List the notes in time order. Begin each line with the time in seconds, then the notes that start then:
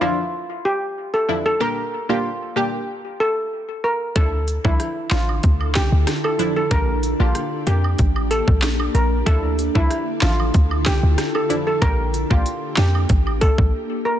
0.01 F3 D4 E4 F4
0.65 G4
1.14 A4
1.29 F3 D4 E4
1.46 A4
1.60 A#3 D4 G4 A#4
2.09 A#3 D4 F4 G4
2.56 A#3 D4 G4
3.20 A4
3.84 A#4
4.15 D2 D3 F3 D4 E4 F4 A4, kick, closed hi-hat
4.48 closed hi-hat, cabasa
4.64 C2 F3 D4 E4, kick
4.80 cross-stick, closed hi-hat
5.10 A1 F3 D4 E4 F4, snare, clap, closed hi-hat, cabasa
5.29 high woodblock
5.43 D2, kick, closed hi-hat
5.61 high woodblock
5.75 G4, kick, snare, clap, closed hi-hat, cabasa
5.92 D2
6.07 cross-stick, snare, closed hi-hat
6.24 A4, high woodblock
6.39 F3 D4 E4, closed hi-hat, cabasa
6.56 A4
6.71 A#1 A#3 D4 G4 A#4, kick, closed hi-hat
7.03 closed hi-hat, cabasa
7.20 A#1 A#3 D4 F4 G4
7.35 cross-stick, closed hi-hat
7.67 F2 A#3 D4 G4, closed hi-hat, cabasa
7.84 high woodblock
7.99 A1, kick, closed hi-hat
8.16 high woodblock
8.31 A4, closed hi-hat, cabasa
8.48 A#1, kick
8.62 cross-stick, snare, clap, closed hi-hat
8.80 high woodblock
8.94 A#1 A#4, closed hi-hat, cabasa
9.26 D2 D3 F3 D4 E4 F4 A4, kick, closed hi-hat
9.58 closed hi-hat, cabasa
9.75 C2 F3 D4 E4, kick
9.90 cross-stick, closed hi-hat
10.21 A1 F3 D4 E4 F4, snare, clap, closed hi-hat, cabasa
10.40 high woodblock
10.54 D2, kick, closed hi-hat
10.71 high woodblock
10.85 G4, kick, snare, clap, closed hi-hat, cabasa
11.03 D2
11.18 cross-stick, snare, closed hi-hat
11.35 A4, high woodblock
11.49 F3 D4 E4, closed hi-hat, cabasa
11.67 A4
11.82 A#1 A#3 D4 G4 A#4, kick, closed hi-hat
12.14 closed hi-hat, cabasa
12.30 A#1 A#3 D4 F4 G4, kick
12.46 closed hi-hat
12.76 F2 A#3 D4 G4, snare, clap, closed hi-hat, cabasa
12.95 high woodblock
13.09 A1, kick, closed hi-hat
13.27 high woodblock
13.41 A4, kick, closed hi-hat, cabasa
13.58 A#1, kick
14.05 A#4